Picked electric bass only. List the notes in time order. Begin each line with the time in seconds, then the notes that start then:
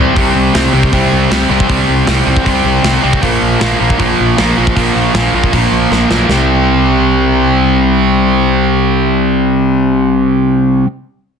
Already playing: C2
0.16 C2
0.35 C2
0.55 C2
0.73 C2
0.93 C2
1.12 C2
1.31 C2
1.50 C2
1.69 C2
1.89 C2
2.07 C2
2.27 C2
2.46 C2
2.65 C2
2.84 C2
3.04 C2
3.23 A#1
3.42 A#1
3.62 A#1
3.81 A#1
4.00 A#1
4.20 A#1
4.39 A#1
4.58 A#1
4.76 A#1
4.95 A#1
5.14 A#1
5.33 A#1
5.53 A#1
5.72 A#1
5.91 A#1
6.11 B1
6.29 C2